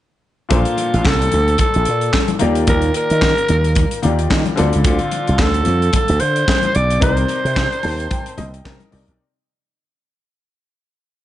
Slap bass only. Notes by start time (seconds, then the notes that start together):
0.51 A#1
0.94 A1
1.06 C2
1.33 D2
1.76 A#1
1.88 A#2
2.42 D#2
2.68 D#2
3.11 D#3
3.50 D#2
4.05 D#2
4.31 D#3
4.59 D2
4.75 C#2
4.85 D2
5.29 C2
5.39 D2
5.67 F2
6.09 D2
6.22 D3
6.76 B1
7.02 C2
7.45 C3
7.85 D#2
8.38 C2
8.66 C3
8.93 C2
9.08 B1